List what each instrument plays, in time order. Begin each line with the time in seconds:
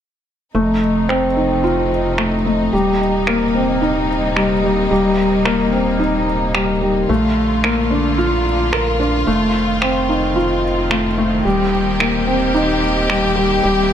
0.54 analog synth bass F1, string section C3 F3 A3 D#4, felt piano A3
1.09 felt piano C4, finger snap
1.37 felt piano D#4
1.64 felt piano F4
2.18 felt piano A3, finger snap
2.46 felt piano A3
2.73 analog synth bass D#1, string section C3 G3 A#3, felt piano G3
3.27 felt piano A#3, finger snap
3.55 felt piano C4
3.82 felt piano D#4
4.36 felt piano G3, finger snap
4.64 felt piano G3
4.91 analog synth bass D#1, felt piano G3
5.45 felt piano A#3, finger snap
5.72 felt piano C4
5.99 felt piano D#4
6.54 felt piano G3, finger snap
6.82 felt piano G3
7.09 analog synth bass A#1, string section D3 F4, felt piano A3
7.64 felt piano A#3, finger snap
7.91 felt piano D4
8.18 felt piano F4
8.73 felt piano A#4, finger snap
9.00 felt piano D4
9.27 analog synth bass F1, string section D#3 C4, felt piano A3
9.82 felt piano C4, finger snap
10.09 felt piano D#4
10.36 felt piano F4
10.91 felt piano A3, finger snap
11.18 felt piano A3
11.45 analog synth bass D#1, felt piano G3, string section A#3 G4
12.00 felt piano A#3, finger snap
12.27 felt piano C4
12.54 felt piano D#4
13.09 felt piano G3, finger snap
13.36 felt piano G3
13.63 analog synth bass D#1, felt piano G3